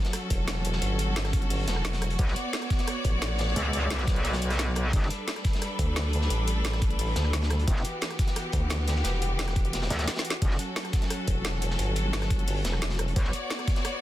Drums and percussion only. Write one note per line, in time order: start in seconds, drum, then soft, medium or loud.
0.05 snare medium
0.05 closed hi-hat soft
0.13 cross-stick soft
0.13 closed hi-hat loud
0.13 closed hi-hat medium
0.30 kick medium
0.30 closed hi-hat medium
0.48 snare loud
0.48 closed hi-hat loud
0.48 closed hi-hat medium
0.65 closed hi-hat medium
0.73 snare medium
0.82 closed hi-hat medium
0.99 closed hi-hat medium
1.16 snare loud
1.16 closed hi-hat medium
1.16 closed hi-hat loud
1.25 cross-stick soft
1.25 snare medium
1.25 closed hi-hat soft
1.33 kick loud
1.33 closed hi-hat medium
1.42 closed hi-hat soft
1.50 closed hi-hat medium
1.50 open hi-hat medium
1.68 snare loud
1.68 closed hi-hat medium
1.76 cross-stick soft
1.84 snare loud
1.84 closed hi-hat medium
1.93 snare loud
1.93 closed hi-hat medium
2.02 cross-stick medium
2.02 closed hi-hat medium
2.10 closed hi-hat medium
2.18 kick loud
2.18 closed hi-hat medium
2.28 snare soft
2.36 closed hi-hat medium
2.53 snare loud
2.53 closed hi-hat medium
2.62 cross-stick soft
2.62 closed hi-hat soft
2.70 kick loud
2.70 snare soft
2.70 closed hi-hat medium
2.79 snare medium
2.79 closed hi-hat soft
2.88 cross-stick medium
2.88 closed hi-hat loud
2.88 closed hi-hat medium
3.04 kick medium
3.04 closed hi-hat medium
3.22 snare loud
3.22 closed hi-hat medium
3.38 snare loud
3.38 closed hi-hat medium
3.48 snare soft
3.56 closed hi-hat medium
3.56 closed hi-hat loud
3.73 closed hi-hat medium
3.90 snare loud
3.90 closed hi-hat medium
3.99 cross-stick soft
3.99 snare medium
3.99 closed hi-hat soft
4.07 kick loud
4.07 snare loud
4.07 closed hi-hat medium
4.16 closed hi-hat soft
4.25 snare soft
4.25 closed hi-hat medium
4.33 snare loud
4.33 closed hi-hat medium
4.42 closed hi-hat medium
4.50 cross-stick soft
4.50 snare soft
4.50 closed hi-hat medium
4.50 closed hi-hat soft
4.59 snare loud
4.59 closed hi-hat medium
4.75 cross-stick medium
4.75 closed hi-hat medium
4.93 kick loud
4.93 closed hi-hat medium
5.03 snare soft
5.10 closed hi-hat medium
5.28 snare loud
5.28 closed hi-hat medium
5.28 closed hi-hat loud
5.36 cross-stick soft
5.36 closed hi-hat soft
5.44 kick loud
5.44 snare soft
5.44 closed hi-hat medium
5.53 snare medium
5.53 closed hi-hat soft
5.62 cross-stick soft
5.62 closed hi-hat medium
5.79 kick medium
5.79 closed hi-hat medium
5.96 snare loud
5.96 closed hi-hat medium
6.13 closed hi-hat medium
6.22 snare soft
6.30 closed hi-hat medium
6.47 closed hi-hat medium
6.64 snare loud
6.64 closed hi-hat medium
6.64 closed hi-hat loud
6.73 cross-stick soft
6.73 snare medium
6.73 closed hi-hat soft
6.82 kick loud
6.82 closed hi-hat medium
6.90 closed hi-hat soft
6.99 closed hi-hat medium
6.99 open hi-hat medium
7.16 snare loud
7.16 closed hi-hat medium
7.25 cross-stick soft
7.33 snare loud
7.33 closed hi-hat medium
7.42 snare loud
7.42 closed hi-hat medium
7.50 cross-stick medium
7.50 closed hi-hat medium
7.59 closed hi-hat medium
7.67 kick loud
7.67 closed hi-hat medium
7.76 snare soft
7.84 closed hi-hat medium
8.01 snare loud
8.01 closed hi-hat loud
8.10 cross-stick soft
8.10 closed hi-hat soft
8.19 kick loud
8.19 snare soft
8.19 closed hi-hat medium
8.27 snare medium
8.27 closed hi-hat soft
8.36 cross-stick soft
8.36 closed hi-hat medium
8.36 closed hi-hat loud
8.52 kick medium
8.52 closed hi-hat medium
8.70 snare loud
8.70 closed hi-hat medium
8.70 closed hi-hat loud
8.87 snare loud
8.87 closed hi-hat medium
8.96 snare soft
9.04 snare loud
9.04 closed hi-hat loud
9.04 closed hi-hat medium
9.22 closed hi-hat medium
9.39 snare loud
9.39 closed hi-hat loud
9.39 closed hi-hat medium
9.48 cross-stick soft
9.48 snare medium
9.48 closed hi-hat soft
9.56 kick loud
9.56 closed hi-hat medium
9.65 closed hi-hat soft
9.73 snare loud
9.73 closed hi-hat medium
9.73 closed hi-hat loud
9.82 snare loud
9.82 closed hi-hat medium
9.90 snare loud
9.90 closed hi-hat medium
9.99 cross-stick soft
9.99 snare loud
9.99 closed hi-hat soft
9.99 closed hi-hat medium
10.08 snare medium
10.08 snare loud
10.08 closed hi-hat loud
10.08 closed hi-hat medium
10.15 snare loud
10.15 closed hi-hat medium
10.19 snare medium
10.25 closed hi-hat medium
10.30 snare loud
10.30 closed hi-hat medium
10.42 kick loud
10.42 closed hi-hat loud
10.42 closed hi-hat medium
10.51 snare soft
10.59 closed hi-hat medium
10.76 snare loud
10.76 closed hi-hat loud
10.85 cross-stick soft
10.85 closed hi-hat soft
10.93 kick loud
10.93 snare soft
10.93 closed hi-hat medium
11.02 snare medium
11.02 closed hi-hat soft
11.10 cross-stick medium
11.10 closed hi-hat medium
11.10 closed hi-hat loud
11.28 kick medium
11.28 closed hi-hat medium
11.44 snare loud
11.44 closed hi-hat medium
11.44 closed hi-hat loud
11.62 closed hi-hat medium
11.71 snare medium
11.79 closed hi-hat loud
11.96 closed hi-hat medium
12.13 snare loud
12.13 closed hi-hat loud
12.13 closed hi-hat medium
12.22 cross-stick soft
12.22 snare medium
12.22 closed hi-hat soft
12.30 kick loud
12.30 closed hi-hat medium
12.39 closed hi-hat soft
12.48 closed hi-hat loud
12.48 open hi-hat medium
12.65 snare loud
12.65 closed hi-hat medium
12.73 cross-stick soft
12.82 snare loud
12.82 closed hi-hat loud
12.82 closed hi-hat medium
12.89 snare loud
12.89 closed hi-hat medium
12.99 cross-stick medium
12.99 closed hi-hat medium
13.08 closed hi-hat medium
13.16 kick loud
13.16 closed hi-hat medium
13.25 snare soft
13.33 closed hi-hat medium
13.50 snare loud
13.50 closed hi-hat loud
13.50 closed hi-hat medium
13.59 cross-stick soft
13.59 closed hi-hat soft
13.68 kick loud
13.68 snare soft
13.68 closed hi-hat medium
13.76 snare medium
13.76 closed hi-hat soft
13.85 cross-stick soft
13.85 closed hi-hat medium
13.85 closed hi-hat loud